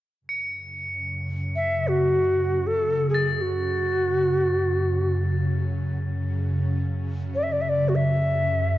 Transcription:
0.21 ambient pad F#2 C#3
0.29 crotales C#7
1.56 native american-style wooden flute E5
1.88 native american-style wooden flute F#4
2.67 native american-style wooden flute A4
3.09 native american-style wooden flute G#4
3.14 crotales A6
3.33 native american-style wooden flute G#4
3.41 native american-style wooden flute F#4
7.35 native american-style wooden flute D5
7.43 native american-style wooden flute E5
7.52 native american-style wooden flute D5
7.61 native american-style wooden flute E5
7.69 native american-style wooden flute D5
7.88 native american-style wooden flute F#4
7.95 native american-style wooden flute E5

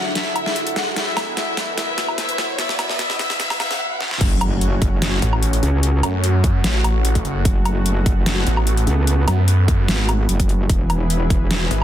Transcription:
Already playing: analog synth pad D2 D3 F#3 E4, ambient pad D4 A4 E5 F#5, violin section F#4 F#5, riser
0.15 violin section E4 E5, snare, closed hi-hat
0.36 closed hi-hat, low woodblock
0.46 snare
0.56 closed hi-hat
0.67 closed hi-hat
0.76 violin section F#4 F#5, snare, closed hi-hat
0.96 analog synth pad E2 B2 E4, violin section E4 E5, ambient pad B4, snare, closed hi-hat
1.17 snare, closed hi-hat, low woodblock
1.37 violin section E4 E5, snare, closed hi-hat
1.57 snare, closed hi-hat
1.77 violin section E4 E5, snare, closed hi-hat
1.98 snare, closed hi-hat
2.08 low woodblock
2.18 violin section E4 E5, snare, closed hi-hat
2.29 closed hi-hat
2.38 snare, closed hi-hat
2.59 violin section E4 E5, snare, closed hi-hat
2.69 snare
2.79 violin section E4 E5, snare, closed hi-hat, low woodblock
2.90 snare
2.99 violin section E4 E5, snare, closed hi-hat
3.10 snare
3.19 violin section E4 E5, snare, closed hi-hat
3.30 snare
3.40 violin section E4 E5, snare, closed hi-hat
3.50 snare, low woodblock
3.60 violin section E4 E5, snare, closed hi-hat, low woodblock
3.71 snare, closed hi-hat
4.01 snare
4.11 snare
4.21 wobble bass F#1, analog synth pad A3 C#4 F#4, kick, closed hi-hat, crash, impact
4.41 closed hi-hat, low woodblock
4.61 closed hi-hat
4.82 wobble bass F#1, kick, closed hi-hat
5.02 snare, closed hi-hat
5.22 detuned saw bass A1, closed hi-hat
5.33 low woodblock
5.43 closed hi-hat
5.53 closed hi-hat
5.63 wobble bass C#2, closed hi-hat
5.83 closed hi-hat
6.03 detuned saw bass F#2, closed hi-hat, low woodblock
6.24 closed hi-hat
6.44 kick, closed hi-hat
6.64 detuned saw bass A1, snare, closed hi-hat
6.84 detuned saw bass A1, closed hi-hat, low woodblock
7.05 closed hi-hat
7.15 kick, closed hi-hat
7.25 detuned saw bass F#1, closed hi-hat
7.45 wobble bass F#1, analog synth pad B3, kick, closed hi-hat
7.66 closed hi-hat, low woodblock
7.86 closed hi-hat
8.06 wobble bass F#1, kick, closed hi-hat
8.26 snare, closed hi-hat
8.47 detuned saw bass A1, closed hi-hat
8.57 low woodblock
8.67 closed hi-hat
8.77 closed hi-hat
8.87 wobble bass C#2, closed hi-hat
9.07 closed hi-hat
9.28 detuned saw bass F#2, closed hi-hat, low woodblock
9.48 closed hi-hat
9.68 kick, closed hi-hat
9.88 wobble bass G#1, snare, closed hi-hat
10.09 closed hi-hat, low woodblock
10.29 wobble bass F#1, closed hi-hat
10.40 kick, closed hi-hat
10.49 closed hi-hat
10.69 wobble bass E1, analog synth pad E3 E4 G#4 B4, kick, closed hi-hat
10.90 closed hi-hat, low woodblock
11.10 closed hi-hat
11.30 wobble bass E1, kick, closed hi-hat
11.51 snare, closed hi-hat
11.71 detuned saw bass G#1, closed hi-hat

